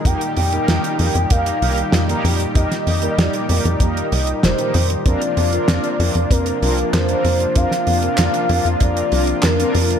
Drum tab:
HH |xxoxxxoxxxoxxxox|xxoxxxoxxxoxxxox|xxoxxxoxxxoxxxox|xxoxxxoxxxoxxxox|
CP |----------------|----------------|----x-------x---|----x-------x---|
SD |----o-------o---|-o--o-------o---|----o-------o---|-o--o-------o---|
BD |o-------o-------|o-------o-------|o-------o-------|o-------o-------|